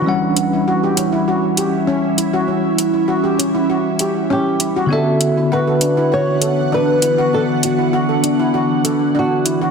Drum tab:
HH |-x-x-x-x|-x-x-x-x|-x-x-x-x|-x-x-x-x|